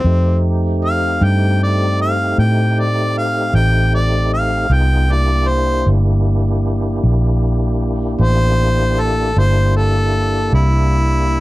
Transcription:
Already playing: C4
0.04 F2 A3 C4 D#4 G4
0.85 F5
1.21 G2 G5
1.63 D5
2.02 F5
2.38 A2 G5
2.79 D5
3.18 F5
3.54 A1 G5
3.95 D5
4.34 F5
4.70 C2 B3 D#4 F4 G#4 G5
5.10 A#3 D4 E4 G4 D5
5.48 C5
5.86 G1
7.04 A#1
8.19 A1 C5
9.00 A4
9.36 G1 A#3 D4 E4 G4 C5
9.76 A4
10.53 C2 E4

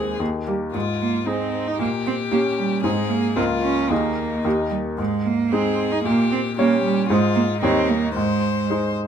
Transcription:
Already playing: D#2 G#3 C4 G#4
0.20 D#2 A#3
0.47 G3 A#3 G4
0.73 G#2 G#3 F4
1.00 A#3
1.26 C4 D#4 G#4
1.68 D#4
1.78 A#2 A#3 G4
2.07 C4
2.31 A#3 C#4 G4
2.58 G3
2.83 G#2 G#3 C4 D#4 G#4
3.09 A#3
3.36 C#2 A#3 C4 F4 A#4
3.62 C#4
3.90 D#2 A#3 D#4 G#4
4.44 D#2 A#3 D#4 G4
4.70 G3
4.98 G#2 G#3
5.25 A#3
5.52 G#3 C4 D#4 G#4
5.92 D#4
6.04 A#2 A#3 G4
6.32 C4
6.57 G3 A#3 C#4 G4 C#5
6.84 G3
7.09 G#2 G#3 D#4 F4 C5
7.35 A#3
7.61 D#2 G3 C4 D#4 C#5
7.89 A#3
8.15 G#2 G#3 C5
8.70 G#3 D#4 C5

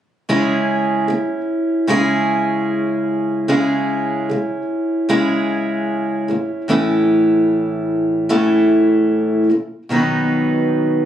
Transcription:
0.29 C#3 G#3 C#4 E4 G#4
1.08 C#3 G#3
1.87 C#3 G#3 C#4 E4 G#4
3.48 C#3 G#3 C#4 E4 G#4
4.30 C#3 G#3
5.09 C#3 G#3 C#4 E4 G#4
6.28 A2 E3 A3
6.68 A2 E3 A3 C#4 E4 A4
8.29 A2 E3 A3 C#4 E4 A4
9.50 B2 D#3 F#3
9.89 B2 D#3 F#3 B3 D#4 B4

